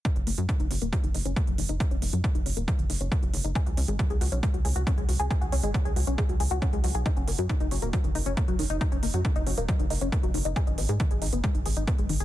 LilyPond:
<<
  \new Staff \with { instrumentName = "Synth arpeggio sound" } { \time 4/4 \key fis \major \tempo 4 = 137 dis'16 cis'16 ais16 fis16 dis16 dis'16 cis'16 ais16 fis16 dis16 dis'16 cis'16 ais16 fis16 dis16 dis'16 | dis'16 cis'16 ais16 fis16 dis16 dis'16 cis'16 ais16 fis16 dis16 dis'16 cis'16 ais16 fis16 dis16 dis'16 | gis'16 fis'16 cis'16 gis16 fis16 gis'16 fis'16 cis'16 gis16 fis16 gis'16 fis'16 cis'16 gis16 fis16 gis'16 | gis'16 fis'16 cis'16 gis16 fis16 gis'16 fis'16 cis'16 gis16 fis16 gis'16 fis'16 cis'16 gis16 fis16 gis'16 |
dis'16 cis'16 ais16 fis16 dis16 dis'16 cis'16 ais16 fis16 dis16 dis'16 cis'16 ais16 fis16 dis16 dis'16 | dis'16 cis'16 ais16 fis16 dis16 dis'16 cis'16 ais16 fis16 dis16 dis'16 cis'16 ais16 fis16 dis16 dis'16 | gis'16 dis'16 b16 gis16 dis16 gis'16 dis'16 b16 gis16 dis16 gis'16 dis'16 b16 gis16 dis16 gis'16 | }
  \new Staff \with { instrumentName = "Analog synth bass" } { \clef bass \time 4/4 \key fis \major r16 fis,,16 fis,,16 fis,16 r16 fis,,16 fis,,16 dis,,16 r16 fis,,16 fis,,16 fis,,16 r16 fis,,16 fis,,16 fis,,16 | r16 fis,,16 fis,,16 fis,16 r16 fis,,16 fis,,16 dis,,16 r16 fis,,16 fis,,16 fis,,16 r16 fis,,16 fis,,16 fis,,16 | r16 cis,16 cis,16 gis,,16 r16 cis,16 cis,16 b,,16 r16 cis,16 cis,16 cis,16 r16 cis,16 cis,16 cis,16 | r16 cis,16 cis,16 gis,,16 r16 cis,16 cis,16 b,,16 r16 cis,16 cis,16 cis,16 r16 cis,16 cis,16 b,,16 |
r16 fis,,16 fis,,16 fis,16 r16 fis,,16 fis,,16 dis,,16 r16 fis,,16 fis,,16 fis,,16 r16 fis,,16 fis,,16 fis,,16 | r16 fis,,16 fis,,16 fis,16 r16 fis,,16 fis,,16 dis,,16 r16 fis,,16 fis,,16 fis,,16 r16 fis,,16 fis,,16 fis,,16 | r16 gis,,16 gis,,16 gis,16 r16 gis,,16 gis,,16 fis,,16 r16 gis,,16 gis,,16 gis,,16 r16 gis,,16 gis,,16 gis,,16 | }
  \new DrumStaff \with { instrumentName = "Drums" } \drummode { \time 4/4 <hh bd>16 hh16 hho16 hh16 <hh bd>16 hh16 hho16 hh16 <hh bd>16 hh16 hho16 hh16 <hh bd>16 hh16 hho16 hh16 | <hh bd>16 hh16 hho16 hh16 <hh bd>16 hh16 hho16 hh16 <hh bd>16 hh16 hho16 hh16 <hh bd>16 hh16 hho16 hh16 | <hh bd>16 hh16 hho16 hh16 <hh bd>16 hh16 hho16 hh16 <hh bd>16 hh16 hho16 hh16 <hh bd>16 hh16 hho16 hh16 | <hh bd>16 hh16 hho16 hh16 <hh bd>16 hh16 hho16 hh16 <hh bd>16 hh16 hho16 hh16 <hh bd>16 hh16 hho16 hh16 |
<hh bd>16 hh16 hho16 hh16 <hh bd>16 hh16 hho16 hh16 <hh bd>16 hh16 hho16 hh16 <hh bd>16 hh16 hho16 hh16 | <hh bd>16 hh16 hho16 hh16 <hh bd>16 hh16 hho16 hh16 <hh bd>16 hh16 hho16 hh16 <hh bd>16 hh16 hho16 hh16 | <hh bd>16 hh16 hho16 hh16 <hh bd>16 hh16 hho16 hh16 <hh bd>16 hh16 hho16 hh16 <hh bd>16 hh16 hho16 hh16 | }
>>